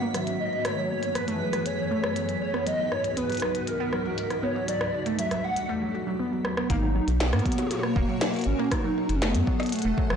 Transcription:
Already playing: ambient pad G#2 D#3 A#3 B3 C#4 F#4, soft synth lead F#5, synth texture B6
0.02 synth pluck A#3
0.14 synth pluck F#3, soft synth lead E5, cross-stick, closed hi-hat
0.27 synth pluck F#3, closed hi-hat
0.40 soft synth lead D#5
0.65 ambient pad F#2 E3 A3 G#4, synth pluck A3, soft synth lead C#5, cross-stick, closed hi-hat
0.78 synth pluck F#3
0.90 synth pluck F#3, soft synth lead C#5
1.03 closed hi-hat
1.15 soft synth lead B4, cross-stick, closed hi-hat
1.28 synth pluck A3, closed hi-hat
1.41 synth pluck F#3, soft synth lead B4
1.53 synth pluck F#3, cross-stick, closed hi-hat
1.66 soft synth lead C#5, closed hi-hat
1.91 synth pluck A3
2.04 synth pluck F#3, cross-stick
2.16 synth pluck F#3, closed hi-hat
2.29 closed hi-hat
2.41 ambient pad C#2 G#2 D#4 F#4, soft synth lead C#5
2.54 synth pluck B3, cross-stick
2.67 synth pluck F#3, soft synth lead D#5, closed hi-hat
2.79 synth pluck F#3
2.92 soft synth lead C#5, cross-stick
3.04 closed hi-hat
3.17 synth pluck B3, soft synth lead B4, closed hi-hat
3.30 synth pluck F#3, closed hi-hat
3.32 closed hi-hat
3.35 closed hi-hat
3.37 closed hi-hat
3.40 synth pluck F#3, cross-stick, closed hi-hat
3.55 closed hi-hat
3.67 soft synth lead A#4, closed hi-hat
3.80 synth pluck B3
3.93 synth pluck F#3, cross-stick
4.05 synth pluck F#3
4.18 closed hi-hat
4.30 cross-stick, closed hi-hat
4.43 synth pluck B3, soft synth lead C#5
4.56 synth pluck F#3
4.68 ambient pad E2 B2 G3 A3 D4, synth pluck F#3, soft synth lead D5, closed hi-hat
4.81 cross-stick
5.06 synth pluck A3, closed hi-hat
5.19 synth pluck F#3, soft synth lead E5, closed hi-hat
5.31 synth pluck F#3, cross-stick, closed hi-hat
5.44 soft synth lead F#5
5.56 closed hi-hat
5.69 synth pluck A3
5.82 synth pluck F#3
5.94 synth pluck F#4
6.07 synth pluck F#3
6.19 synth pluck B3
6.32 synth pluck F#3
6.45 synth pluck F#3, cross-stick
6.57 synth pluck B3, cross-stick
6.70 analog synth bass G#1, ambient pad B2 F#4 A#4 C#5, synth pluck A#3, soft synth lead D#4, kick, closed hi-hat
6.82 synth pluck F#3
6.95 synth pluck F#3
7.08 analog synth bass B1, closed hi-hat
7.20 soft synth lead B3, snare, closed hi-hat
7.33 analog synth bass G#2, synth pluck A#3, cross-stick, closed hi-hat
7.39 closed hi-hat
7.45 synth pluck F#3, kick, closed hi-hat
7.52 closed hi-hat
7.58 synth pluck F#3, closed hi-hat, high tom
7.62 high tom
7.67 high tom
7.71 soft synth lead A#3, closed hi-hat, high tom
7.75 high tom
7.79 high tom
7.83 cross-stick
7.96 analog synth bass D#1, synth pluck A#3, kick
8.09 synth pluck F#3
8.21 synth pluck F#3, cross-stick, snare, closed hi-hat
8.34 closed hi-hat
8.36 closed hi-hat
8.39 closed hi-hat
8.41 closed hi-hat
8.44 analog synth bass G#1, soft synth lead C#4, closed hi-hat
8.59 synth pluck A#3
8.71 synth pluck F#3, soft synth lead D#4, ambient pad G#4 A4 F#5, kick, cross-stick, closed hi-hat
8.84 synth pluck F#3
9.09 analog synth bass F#1, closed hi-hat
9.15 soft synth lead C#4
9.22 synth pluck A3, soft synth lead B3, cross-stick, snare, closed hi-hat
9.35 analog synth bass F#2, synth pluck F#3, closed hi-hat
9.47 synth pluck F#3, kick
9.60 cross-stick, closed hi-hat
9.63 closed hi-hat
9.66 closed hi-hat
9.69 closed hi-hat
9.72 soft synth lead A3, closed hi-hat
9.76 closed hi-hat
9.79 closed hi-hat
9.82 analog synth bass E1, synth pluck A3, closed hi-hat
9.98 synth pluck F#3, kick
10.10 analog synth bass F#1, synth pluck F#3, cross-stick

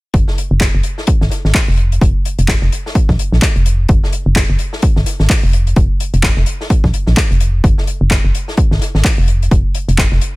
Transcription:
0.14 fm bass F#1, kick, closed hi-hat
0.28 snare
0.38 closed hi-hat
0.51 fm bass F#1
0.60 kick, snare, clap, closed hi-hat
0.75 fm bass F#1
0.83 closed hi-hat
0.98 snare
1.07 kick, closed hi-hat
1.21 fm bass G#1, snare
1.31 snare, closed hi-hat
1.45 fm bass G#1, snare
1.55 kick, snare, clap, open hi-hat
1.68 fm bass F1
1.77 closed hi-hat
1.92 closed hi-hat
2.01 fm bass F1, kick, closed hi-hat
2.25 closed hi-hat
2.39 fm bass F1, closed hi-hat
2.48 kick, snare, clap, closed hi-hat
2.62 fm bass F1, snare
2.72 closed hi-hat
2.86 snare
2.95 kick, closed hi-hat
3.08 fm bass A#1, kick, snare
3.19 closed hi-hat
3.32 fm bass A#1, snare
3.42 kick, snare, clap, closed hi-hat
3.56 fm bass F1, closed hi-hat
3.66 closed hi-hat
3.89 fm bass F#1, kick, closed hi-hat
4.04 snare
4.12 closed hi-hat
4.26 fm bass F#1
4.35 kick, snare, clap, closed hi-hat
4.50 fm bass F#1
4.59 closed hi-hat
4.73 snare
4.82 kick, closed hi-hat
4.96 fm bass G#1, snare
5.06 snare, closed hi-hat
5.20 fm bass G#1, snare
5.29 kick, snare, clap, open hi-hat
5.43 fm bass F1
5.53 closed hi-hat
5.67 closed hi-hat
5.76 fm bass F1, kick, closed hi-hat
6.00 closed hi-hat
6.14 fm bass F1, closed hi-hat
6.23 kick, snare, clap, closed hi-hat
6.36 fm bass F1, snare
6.46 closed hi-hat
6.61 snare
6.70 kick, closed hi-hat
6.84 fm bass A#1, kick, snare
6.94 closed hi-hat
7.07 fm bass A#1, snare
7.17 kick, snare, clap, closed hi-hat
7.31 fm bass F1, closed hi-hat
7.40 closed hi-hat
7.64 fm bass F#1, kick, closed hi-hat
7.78 snare
7.87 closed hi-hat
8.01 fm bass F#1
8.11 kick, snare, clap, closed hi-hat
8.24 fm bass F#1
8.35 closed hi-hat
8.48 snare
8.57 kick, closed hi-hat
8.71 fm bass G#1, snare
8.81 snare, closed hi-hat
8.95 fm bass G#1, snare
9.04 kick, snare, clap, open hi-hat
9.18 fm bass F1
9.28 closed hi-hat
9.42 closed hi-hat
9.51 fm bass F1, kick, closed hi-hat
9.75 closed hi-hat
9.88 fm bass F1, closed hi-hat
9.98 kick, snare, clap, closed hi-hat
10.12 fm bass F1, snare
10.21 closed hi-hat

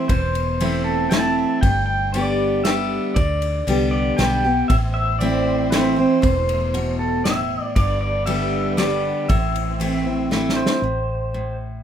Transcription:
0.08 fingered electric bass E1, steel-string acoustic guitar E2, pedal steel guitar C5, kick, ride
0.35 ride
0.60 steel-string acoustic guitar E3 A3 C4 E4, ride
0.84 pedal steel guitar A4
1.10 steel-string acoustic guitar E3 A3 C4 E4, pedal steel guitar A5, snare, ride
1.61 fingered electric bass G1, steel-string acoustic guitar G2, pedal steel guitar G5, kick, ride
1.86 pedal steel guitar G5
2.13 steel-string acoustic guitar D3 G3 B3 G4, pedal steel guitar D5, ride
2.64 steel-string acoustic guitar D3 G3 B3 G4, pedal steel guitar E5, snare, ride
3.14 fingered electric bass D2, steel-string acoustic guitar D3, pedal steel guitar D5, kick, ride
3.42 ride
3.67 fingered electric bass C2, steel-string acoustic guitar D3 G3 B3 G4, ride
3.91 pedal steel guitar D5
4.17 fingered electric bass B1, steel-string acoustic guitar D3 G3 B3 G4, pedal steel guitar G5, snare, ride
4.44 steel-string acoustic guitar B3 G4
4.68 fingered electric bass A1, steel-string acoustic guitar A2, string section E3 A3 C5, pedal steel guitar E5, kick, ride
4.94 pedal steel guitar E5
5.19 steel-string acoustic guitar E3 A3 C4, pedal steel guitar D5, ride
5.23 steel-string acoustic guitar E4
5.70 steel-string acoustic guitar E3 A3 C4 E4, pedal steel guitar C5, snare, ride
5.96 steel-string acoustic guitar C4 E4
6.22 fingered electric bass E1, steel-string acoustic guitar E2, pedal steel guitar C5, kick, ride
6.49 ride
6.74 steel-string acoustic guitar B2, ride
6.99 pedal steel guitar A4
7.24 steel-string acoustic guitar A2, pedal steel guitar E5, snare, ride
7.75 fingered electric bass G1, steel-string acoustic guitar G2, string section D3 G3 B3, pedal steel guitar D5, kick, ride
8.01 pedal steel guitar D5
8.26 steel-string acoustic guitar D3 G3 B3 G4, pedal steel guitar E5, ride
8.77 steel-string acoustic guitar D3 G3 B3 G4, pedal steel guitar D5, snare, ride
9.29 fingered electric bass A1, steel-string acoustic guitar A2, string section E3 A3 C4, pedal steel guitar E5, kick, ride
9.56 ride
9.80 steel-string acoustic guitar E3 A3 C4 E4, ride
10.05 steel-string acoustic guitar C4 E4
10.31 steel-string acoustic guitar E3 A3 C4 E4, snare
10.49 snare
10.56 pedal steel guitar C5
10.66 snare
10.82 fingered electric bass A1, steel-string acoustic guitar A2
11.34 steel-string acoustic guitar A2

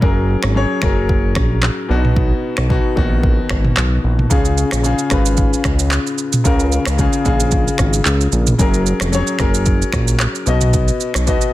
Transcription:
0.01 analog synth bass F#1, grand piano F#3 C#4 G#4 A#4, kick
0.43 analog synth bass G#1, finger snap, cross-stick
0.54 grand piano F#3 C#4 G#4 C#5
0.82 analog synth bass F#1, grand piano F#3 C#4 G#4 A#4, finger snap, kick, cross-stick
1.09 kick
1.35 analog synth bass A#1, finger snap, kick, cross-stick
1.62 finger snap, cross-stick, clap
1.88 analog synth bass B1, grand piano B2 B3 D4 F#4
1.96 grand piano D#4
2.05 mid tom
2.16 kick
2.57 analog synth bass B1, finger snap, cross-stick
2.69 grand piano B2 B3 D#4 F#4, kick
2.96 analog synth bass A#1, grand piano D#3 B3 D#4 F#4, kick
3.23 kick
3.49 analog synth bass G#1, finger snap, kick, cross-stick
3.65 mid tom
3.76 analog synth bass B1, finger snap, cross-stick, clap
4.04 analog synth bass A#1
4.19 mid tom
4.30 analog synth bass C#2, grand piano C#3 C#4 F4 G#4, kick, shaker
4.45 shaker
4.58 shaker
4.71 analog synth bass A#1, finger snap, cross-stick, shaker
4.83 grand piano C#3 C#4 F4 G#4, shaker
4.99 shaker
5.10 analog synth bass G#1, grand piano C#3 C#4 F4 B4, finger snap, kick, cross-stick, shaker
5.26 shaker
5.37 kick, shaker
5.53 shaker
5.64 analog synth bass C#2, finger snap, kick, cross-stick, shaker
5.79 shaker
5.91 finger snap, cross-stick, clap, shaker
6.07 shaker
6.18 shaker
6.33 mid tom, shaker
6.44 analog synth bass C#2, grand piano C#3 C#4 F4 A#4, kick, shaker
6.60 shaker
6.72 shaker
6.85 analog synth bass C#2, finger snap, cross-stick, shaker
6.98 grand piano C#3 C#4 F4 G#4, kick, shaker
7.13 shaker
7.24 analog synth bass A#1, grand piano C#3 C#4 F4 G#4, kick, shaker
7.40 shaker
7.51 kick, shaker
7.68 shaker
7.78 analog synth bass G#1, finger snap, kick, cross-stick, shaker
7.93 shaker
8.05 analog synth bass C#2, clap, shaker
8.21 shaker
8.32 analog synth bass A#1, shaker
8.47 mid tom, shaker
8.58 analog synth bass F#1, grand piano F#3 C#4 G#4 A#4, kick, shaker
8.74 shaker
8.86 shaker
9.00 analog synth bass F1, finger snap, cross-stick, shaker
9.12 grand piano F#3 C#4 G#4 C#5, shaker
9.27 shaker
9.38 analog synth bass F#1, grand piano F#3 C#4 G#4 A#4, finger snap, kick, cross-stick, shaker
9.54 shaker
9.66 kick, shaker
9.82 shaker
9.93 analog synth bass A#1, finger snap, kick, cross-stick, shaker
10.08 shaker
10.19 finger snap, cross-stick, clap, shaker
10.35 shaker
10.46 analog synth bass B1, grand piano B2 B3 F#4 D#5, shaker
10.61 mid tom, shaker
10.73 kick, shaker
10.88 shaker
11.00 shaker
11.14 analog synth bass B1, finger snap, cross-stick, shaker
11.26 grand piano B2 B3 F#4 D#5, kick, shaker
11.41 shaker

